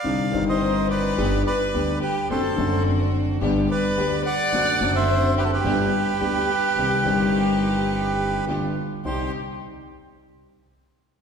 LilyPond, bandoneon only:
\new Staff \with { instrumentName = "Bandoneon" } { \time 4/4 \key c \minor \tempo 4 = 107 << { f''8. ees''8. d''4 d''4 b'8 | c''4 r4. d''4 fis''8~ | fis''8. e''8. b'32 a'32 b'2~ b'16~ | b'2. r4 |
c''8 r2. r8 | } \\ { d''8. c''8. b'4 b'4 g'8 | a'4 r4. b'4 d''8~ | d''8. c''8. g'16 g'2~ g'16~ | g'2. r4 |
r1 | } >> }